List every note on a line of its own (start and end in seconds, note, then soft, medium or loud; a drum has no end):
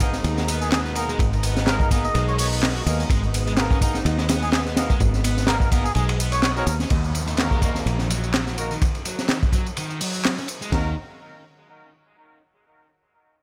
0.00 0.19 G#1 loud
0.00 6.87 B2 medium
0.00 6.87 G#3 medium
0.00 0.16 A#3 medium
0.00 0.16 B3 medium
0.00 6.87 D#4 medium
0.00 0.16 D#4 medium
0.00 0.36 D#4 medium
0.00 0.16 G#4 medium
0.00 3.06 A#4 medium
0.00 0.16 A#4 medium
0.00 kick medium
0.00 ride medium
0.00 tambourine medium
0.13 snare soft
0.13 tambourine soft
0.24 1.14 D#2 loud
0.24 ride medium
0.24 tambourine soft
0.37 0.43 G#3 medium
0.37 snare soft
0.37 tambourine soft
0.48 0.95 B3 medium
0.48 ride medium
0.48 tambourine medium
0.62 0.68 G#4 medium
0.62 tambourine soft
0.72 0.80 G#4 medium
0.72 snare loud
0.72 clap loud
0.72 ride medium
0.72 tambourine soft
0.85 snare soft
0.85 tambourine soft
0.95 1.11 A#3 medium
0.95 1.11 B3 medium
0.95 1.11 D#4 medium
0.95 1.11 G#4 medium
0.95 1.11 A#4 medium
0.95 ride medium
0.95 tambourine medium
1.09 1.19 G#3 medium
1.09 tambourine soft
1.19 2.09 G#1 loud
1.19 kick loud
1.19 ride loud
1.19 tambourine soft
1.33 ride soft
1.33 tambourine soft
1.43 1.66 B3 medium
1.43 ride medium
1.43 tambourine medium
1.57 snare medium
1.57 tambourine soft
1.67 1.74 G#3 medium
1.67 1.88 A#3 medium
1.67 1.88 B3 medium
1.67 1.88 D#4 medium
1.67 1.88 G#4 medium
1.67 1.88 A#4 medium
1.67 1.76 A#4 medium
1.67 snare loud
1.67 clap loud
1.67 ride medium
1.67 tambourine soft
1.80 1.87 A#4 medium
1.80 kick medium
1.80 tambourine soft
1.91 2.07 A#3 medium
1.91 2.07 B3 medium
1.91 2.04 B3 medium
1.91 2.07 D#4 medium
1.91 2.07 G#4 medium
1.91 2.07 A#4 medium
1.91 kick loud
1.91 ride medium
1.91 tambourine medium
2.04 2.23 D#5 medium
2.04 tambourine soft
2.15 2.81 B1 medium
2.15 2.38 G#3 loud
2.15 ride medium
2.15 tambourine soft
2.28 2.35 C#5 medium
2.28 tambourine soft
2.38 2.74 B3 medium
2.38 2.47 C#5 medium
2.38 open hi-hat medium
2.38 ride medium
2.38 tambourine medium
2.52 tambourine soft
2.63 snare loud
2.63 clap loud
2.63 ride medium
2.63 tambourine soft
2.75 2.81 F#4 medium
2.75 tambourine soft
2.86 3.03 D#2 loud
2.86 3.02 A#3 medium
2.86 3.02 B3 medium
2.86 3.02 D#4 medium
2.86 3.02 G#4 medium
2.86 3.02 A#4 loud
2.86 ride medium
2.86 tambourine medium
2.99 3.09 C#4 medium
2.99 tambourine soft
3.10 4.00 G#1 loud
3.10 3.21 G#3 medium
3.10 6.87 B3 medium
3.10 kick loud
3.10 ride medium
3.10 tambourine soft
3.23 tambourine soft
3.34 ride medium
3.34 tambourine medium
3.47 3.53 G#3 medium
3.47 ride soft
3.47 tambourine soft
3.57 3.79 A#3 medium
3.57 3.79 B3 medium
3.57 3.79 D#4 medium
3.57 3.79 G#4 medium
3.57 3.79 A#4 loud
3.57 snare loud
3.57 clap loud
3.57 ride medium
3.57 tambourine soft
3.71 3.80 C#4 medium
3.71 kick loud
3.71 tambourine soft
3.81 3.97 A#3 medium
3.81 3.97 B3 medium
3.81 3.97 D#4 medium
3.81 4.17 D#4 medium
3.81 3.97 G#4 medium
3.81 3.97 A#4 medium
3.81 kick loud
3.81 ride medium
3.81 tambourine medium
3.95 snare soft
3.95 tambourine soft
4.05 4.95 D#2 loud
4.05 ride medium
4.05 tambourine soft
4.18 4.24 G#3 medium
4.18 snare soft
4.18 tambourine soft
4.29 4.76 B3 medium
4.29 snare loud
4.29 ride medium
4.29 tambourine medium
4.42 4.49 G#4 medium
4.42 tambourine soft
4.53 4.61 G#4 medium
4.53 snare loud
4.53 clap loud
4.53 ride medium
4.53 tambourine soft
4.66 snare soft
4.66 tambourine soft
4.77 4.93 A#3 medium
4.77 4.92 B3 medium
4.77 4.92 D#4 medium
4.77 4.92 G#4 medium
4.77 4.93 A#4 loud
4.77 snare loud
4.77 ride medium
4.77 tambourine medium
4.90 5.00 G#3 medium
4.90 kick medium
4.90 tambourine soft
5.00 5.90 G#1 loud
5.00 kick medium
5.00 ride medium
5.00 tambourine soft
5.14 snare soft
5.14 tambourine soft
5.24 5.47 B3 medium
5.24 ride medium
5.24 tambourine medium
5.38 snare soft
5.38 tambourine soft
5.47 5.55 G#3 medium
5.47 5.69 A#3 medium
5.47 5.69 B3 medium
5.47 5.69 D#4 medium
5.47 5.69 G#4 medium
5.47 5.56 A#4 medium
5.47 5.69 A#4 medium
5.47 snare loud
5.47 clap loud
5.47 ride loud
5.47 tambourine soft
5.60 5.68 A#4 medium
5.60 kick loud
5.60 tambourine soft
5.71 5.88 A#3 medium
5.71 5.88 B3 medium
5.71 5.84 B3 medium
5.71 5.88 D#4 medium
5.71 5.88 G#4 medium
5.71 5.88 A#4 medium
5.71 kick loud
5.71 ride medium
5.71 tambourine medium
5.84 5.92 G#4 medium
5.84 tambourine soft
5.95 6.62 B1 medium
5.95 6.18 G#3 loud
5.95 6.04 G#4 medium
5.95 ride medium
5.95 tambourine soft
6.09 ride medium
6.09 tambourine soft
6.19 6.55 B3 medium
6.19 ride loud
6.19 tambourine medium
6.32 6.39 C#5 medium
6.32 ride medium
6.32 tambourine soft
6.42 6.52 C#5 medium
6.42 snare loud
6.42 clap loud
6.42 ride medium
6.42 tambourine soft
6.56 6.70 B3 medium
6.56 6.70 C#4 medium
6.56 6.70 D#4 medium
6.56 6.62 F#4 medium
6.56 6.70 G#4 medium
6.56 6.63 A#4 loud
6.56 6.70 C#5 loud
6.56 tambourine soft
6.67 6.84 D#2 loud
6.67 6.76 A#4 medium
6.67 ride medium
6.67 tambourine medium
6.80 6.90 C#4 medium
6.80 snare soft
6.80 tambourine soft
6.90 7.81 D#2 loud
6.90 7.02 D#3 medium
6.90 kick loud
6.90 ride medium
6.90 tambourine soft
6.90 downlifter medium
7.04 tambourine soft
7.14 ride medium
7.14 tambourine medium
7.27 7.33 D#3 medium
7.27 ride soft
7.27 tambourine soft
7.37 7.60 A#3 medium
7.37 7.60 D#4 medium
7.37 7.60 F#4 medium
7.37 7.60 A#4 medium
7.37 snare loud
7.37 clap loud
7.37 ride medium
7.37 tambourine soft
7.51 7.61 G#3 medium
7.51 kick loud
7.51 tambourine soft
7.62 7.98 A#3 medium
7.62 7.78 A#3 medium
7.62 7.78 D#4 medium
7.62 7.78 F#4 medium
7.62 7.78 A#4 medium
7.62 kick medium
7.62 ride medium
7.62 tambourine medium
7.75 snare soft
7.75 tambourine soft
7.86 8.76 A#1 medium
7.86 ride medium
7.86 tambourine soft
7.99 8.05 D#3 medium
7.99 snare soft
7.99 tambourine soft
8.10 8.57 F#3 medium
8.10 ride medium
8.10 tambourine medium
8.24 tambourine soft
8.34 snare loud
8.34 clap loud
8.34 ride medium
8.34 tambourine soft
8.47 snare soft
8.47 tambourine soft
8.58 8.73 A#3 medium
8.58 8.73 D#4 medium
8.58 8.73 F#4 medium
8.58 8.73 A#4 medium
8.58 ride medium
8.58 tambourine medium
8.71 8.81 D#3 medium
8.71 tambourine soft
8.82 kick loud
8.82 ride medium
8.82 tambourine soft
8.95 ride soft
8.95 tambourine soft
9.05 9.28 F#3 medium
9.05 ride medium
9.05 tambourine medium
9.19 snare soft
9.19 tambourine soft
9.29 9.36 D#3 medium
9.29 snare loud
9.29 clap loud
9.29 ride medium
9.29 tambourine soft
9.43 kick loud
9.43 tambourine soft
9.52 9.66 F#3 medium
9.52 kick medium
9.52 ride medium
9.52 tambourine medium
9.66 tambourine soft
9.77 10.00 D#3 loud
9.77 ride medium
9.77 tambourine soft
9.90 tambourine soft
10.01 10.37 F#3 medium
10.01 open hi-hat medium
10.01 tambourine medium
10.14 tambourine soft
10.24 snare loud
10.24 clap loud
10.24 ride medium
10.24 tambourine soft
10.38 10.44 C#4 medium
10.38 tambourine soft
10.48 ride medium
10.48 tambourine medium
10.62 10.71 G#3 medium
10.62 tambourine soft
10.72 10.94 D#2 medium
10.72 10.94 D#3 medium
10.72 10.90 A#3 medium
10.72 10.90 D#4 medium
10.72 10.90 F#4 medium
10.72 10.90 A#4 medium
10.72 kick loud
10.72 snare loud
10.72 ride bell medium